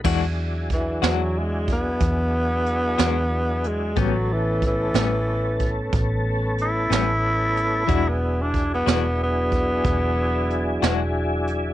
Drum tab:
CC |x-----------|------------|------------|
HH |--xx-xx-xx-x|x-xx-xx-xx-x|x-xx-xx-xx-x|
SD |---o-----o--|---o-----o--|---o-----o--|
BD |o-o--oo-----|o-o--oo-----|o-o--oo-----|